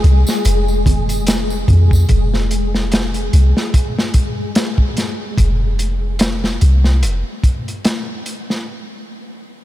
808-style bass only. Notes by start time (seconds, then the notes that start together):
0.04 C2
0.45 F1
1.68 F2
2.10 F1
3.33 C2
5.38 F1
6.62 C2
7.03 F1